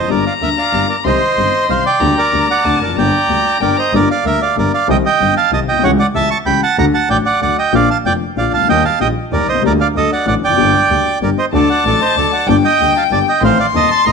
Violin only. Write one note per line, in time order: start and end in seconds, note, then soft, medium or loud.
0.09 1.05 A#5 medium
1.04 2.02 C6 medium
2.00 2.66 A#5 medium
2.64 2.89 A5 medium
2.89 2.98 A5 medium
2.96 3.62 A#5 medium
3.61 3.78 G5 medium
3.76 3.93 A#5 medium
11.53 12.49 A5 medium
12.47 13.42 G5 loud
13.42 14.12 C6 loud